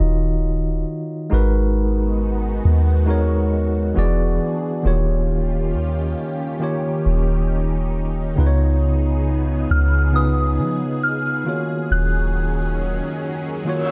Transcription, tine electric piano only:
0.00 0.64 D#3 medium
0.00 0.65 D#4 medium
0.00 0.65 F4 medium
0.00 0.66 F#4 medium
0.00 0.66 D#5 medium
1.30 2.41 G#3 medium
1.30 2.41 D#4 medium
1.30 2.42 F#4 medium
1.30 2.42 A#4 medium
1.34 2.43 B4 medium
3.06 3.96 G#3 medium
3.06 3.96 D#4 medium
3.06 3.95 F#4 medium
3.06 3.97 A#4 medium
3.10 3.98 C#5 medium
3.94 4.69 E3 medium
3.94 4.69 B3 medium
3.94 4.70 F#4 medium
3.94 4.71 G#4 medium
3.99 4.71 D5 loud
4.83 5.94 D#3 medium
4.83 5.94 A#3 medium
4.83 5.95 F4 medium
4.83 5.95 G4 medium
4.87 5.96 C#5 medium
6.59 7.70 D#3 medium
6.59 7.71 A#3 medium
6.59 7.71 F4 medium
6.59 7.72 G4 medium
6.64 7.72 C#5 medium
8.36 9.47 C#3 medium
8.36 9.47 B3 medium
8.36 9.48 D#4 medium
8.36 9.48 F4 medium
8.40 8.46 B4 medium
8.47 9.52 C#5 medium
10.12 11.23 C#3 medium
10.12 11.23 B3 medium
10.12 11.24 D#4 medium
10.12 11.25 F4 medium
10.16 11.25 B4 medium
11.44 12.88 D#3 medium
11.44 12.89 A#3 medium
11.44 12.89 F4 medium
11.44 12.90 F#4 medium
11.49 12.90 C#5 medium
13.65 13.91 D#3 medium
13.65 13.91 A#3 medium
13.65 13.91 F4 medium
13.65 13.91 F#4 medium
13.69 13.91 C#5 medium

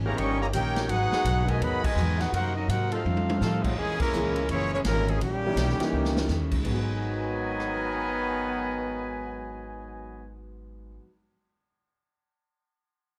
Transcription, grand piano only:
4.14 4.35 G#3 medium
4.14 4.35 A#3 medium
4.14 4.35 C#4 medium
4.14 4.35 E4 medium
4.14 4.35 G#4 medium
5.46 5.79 E3 medium
5.46 5.79 A#3 medium
5.46 5.79 C#4 medium
5.46 5.79 D#4 medium
5.46 5.79 G4 medium
5.80 6.27 E3 medium
5.80 6.27 A#3 medium
5.80 6.27 C#4 medium
5.80 6.27 D#4 medium
5.80 6.27 G4 loud
6.53 10.90 G#2 medium
6.59 10.96 G#3 medium
6.65 11.02 B3 medium
6.72 11.06 F#4 medium
6.78 11.09 B4 medium

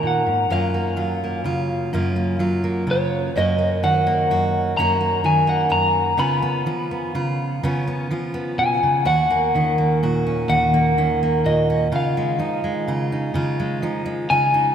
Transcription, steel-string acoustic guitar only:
0.00 0.26 A#2 medium
0.00 0.49 D#3 medium
0.00 0.50 A#3 soft
0.00 0.45 D#4 medium
0.00 0.52 F#4 medium
0.26 0.50 G#2 medium
0.50 1.92 F#2 medium
0.50 0.74 A#3 medium
0.50 1.94 C#4 soft
0.50 0.96 F4 medium
0.74 1.23 A#3 soft
0.96 2.38 F#3 medium
0.96 1.44 F4 medium
1.24 1.93 A#3 soft
1.44 2.39 C#3 medium
1.44 1.92 F4 medium
1.93 3.29 F#2 medium
1.93 2.15 A#3 medium
1.93 3.37 C#4 medium
1.93 2.39 F4 medium
2.16 2.63 A#3 soft
2.39 3.28 F#3 medium
2.39 2.86 F4 medium
2.64 3.29 A#3 medium
2.87 3.29 C#3 medium
2.87 3.34 F4 medium
3.36 4.29 F#2 medium
3.36 3.57 A#3 medium
3.36 4.79 C#4 medium
3.36 3.82 F#4 medium
3.59 4.05 A#3 soft
3.83 5.23 D#3 medium
3.83 4.30 F#4 medium
4.07 4.77 A#3 medium
4.30 4.77 F#2 medium
4.30 4.77 F#4 medium
4.78 5.68 F#2 medium
4.78 4.99 A#3 medium
4.78 6.18 C#4 medium
4.78 5.23 F#4 medium
5.01 5.46 A#3 medium
5.24 6.19 D#3 medium
5.24 5.69 F#4 medium
5.47 6.13 A#3 medium
5.69 6.12 F#2 medium
5.69 6.12 F#4 medium
6.17 6.65 C#3 medium
6.17 6.41 B3 medium
6.17 7.62 C#4 medium
6.17 6.65 F4 medium
6.42 6.90 B3 medium
6.66 8.09 F3 medium
6.66 7.14 F4 medium
6.91 7.62 B3 medium
7.15 7.62 C#3 medium
7.15 7.62 F4 medium
7.63 8.11 C#3 medium
7.63 7.86 B3 medium
7.63 9.01 C#4 medium
7.63 8.10 F4 medium
7.87 8.33 B3 medium
8.11 9.00 F3 medium
8.11 9.05 F4 medium
8.34 9.00 B3 medium
8.58 8.82 B2 medium
8.83 9.06 C#3 medium
9.05 10.47 D#2 medium
9.05 10.01 F#4 medium
9.30 9.77 A#3 medium
9.55 10.96 D#3 medium
9.55 10.26 C#4 medium
9.78 10.73 A#3 medium
10.03 10.97 A#2 medium
10.03 10.48 F#4 medium
10.27 10.97 C#4 soft
10.48 11.91 D#2 medium
10.48 11.44 F#4 medium
10.74 11.21 A#3 medium
10.98 12.38 D#3 medium
10.98 11.68 C#4 medium
11.23 11.87 A#3 medium
11.44 11.91 A#2 medium
11.44 11.86 F#4 medium
11.70 11.87 C#4 soft
11.92 12.39 C#3 medium
11.92 12.87 F4 medium
12.17 12.63 G#3 soft
12.39 13.81 F3 medium
12.39 13.12 D#4 medium
12.64 13.58 G#3 medium
12.88 13.33 C#3 medium
12.88 13.34 F4 medium
13.12 13.83 D#4 medium
13.34 13.81 C#3 medium
13.34 14.29 F4 medium
13.60 14.04 G#3 medium
13.82 14.71 F3 medium
13.82 14.54 D#4 medium
14.06 14.75 G#3 medium
14.30 14.71 C#3 medium
14.30 14.75 F4 medium
14.54 14.75 D#4 medium

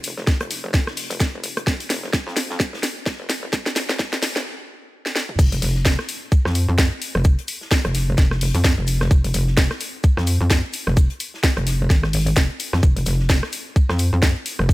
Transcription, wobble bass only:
0.00 0.15 F1 medium
0.17 0.39 F1 loud
0.41 0.62 F1 medium
0.64 1.08 F1 loud
1.10 1.42 F1 medium
1.43 1.65 F1 loud
1.67 2.01 F1 medium
2.03 2.25 F1 medium
2.27 2.71 F2 medium
2.73 2.81 F1 loud
3.06 3.18 F1 medium
3.20 3.41 F1 loud
3.43 3.64 F1 loud
3.66 3.87 F1 loud
3.89 4.11 F1 loud
4.13 4.34 F1 medium
4.36 4.46 F1 loud
5.39 5.50 F1 medium
5.52 5.61 F1 loud
5.62 5.97 F1 loud
6.45 6.66 F2 loud
6.69 6.90 F2 medium
7.15 7.36 F1 loud
7.85 8.16 F1 medium
8.18 8.52 F1 loud
8.55 8.76 F2 loud
8.78 9.09 F1 loud
9.11 9.22 F1 loud
9.24 9.33 F1 loud
9.34 9.69 F1 loud
10.17 10.38 F2 loud
10.41 10.62 F2 medium
10.87 11.08 F1 loud
11.57 11.88 F1 medium
11.90 12.35 G#1 loud
12.36 12.48 F1 loud
12.73 12.81 F2 medium
12.83 12.94 F1 medium
12.96 13.05 F1 loud
13.06 13.41 F1 loud
13.90 14.11 F2 medium
14.13 14.34 F2 medium
14.59 14.74 F1 loud

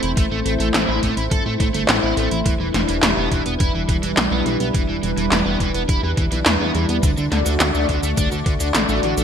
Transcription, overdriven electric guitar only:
0.03 0.10 E4 medium
0.17 0.24 A3 medium
0.31 0.39 A3 medium
0.46 0.53 A3 medium
0.60 0.67 A3 loud
0.74 0.81 A3 medium
0.88 0.99 E4 medium
1.03 1.14 A3 loud
1.17 1.24 E4 medium
1.31 1.42 A4 medium
1.46 1.53 A3 medium
1.60 1.67 A3 medium
1.74 1.81 A3 loud
1.89 1.96 A3 medium
2.03 2.14 E4 medium
2.17 2.28 A3 loud
2.31 2.39 E4 medium
2.46 2.53 E3 medium
2.60 2.67 E3 medium
2.74 2.81 E3 medium
2.89 2.96 E3 loud
3.03 3.10 E3 medium
3.17 3.28 B3 medium
3.32 3.42 E3 loud
3.46 3.53 B3 medium
3.60 3.71 E4 medium
3.75 3.82 E3 medium
3.89 3.96 E3 medium
4.03 4.10 E3 loud
4.17 4.24 E3 medium
4.32 4.42 B3 medium
4.46 4.57 E3 loud
4.60 4.67 B3 medium
4.75 4.82 E3 medium
4.89 4.96 E3 medium
5.03 5.10 E3 medium
5.17 5.24 E3 loud
5.32 5.39 E3 medium
5.46 5.57 B3 medium
5.60 5.71 E3 loud
5.74 5.82 B3 medium
5.89 6.00 E4 medium
6.03 6.10 E3 medium
6.18 6.25 E3 medium
6.32 6.39 E3 loud
6.46 6.53 E3 medium
6.60 6.71 B3 medium
6.75 6.85 E3 loud
6.89 6.96 B3 medium
7.03 7.10 D3 medium
7.18 7.25 D3 medium
7.32 7.39 D3 medium
7.46 7.53 D3 loud
7.60 7.67 D3 medium
7.75 7.85 A3 medium
7.89 7.99 D3 loud
8.03 8.10 A3 medium
8.17 8.28 D4 medium
8.32 8.39 D3 medium
8.46 8.53 D3 medium
8.60 8.67 D3 loud
8.75 8.82 D3 medium
8.89 8.99 A3 medium
9.03 9.14 D3 loud
9.17 9.24 A3 medium

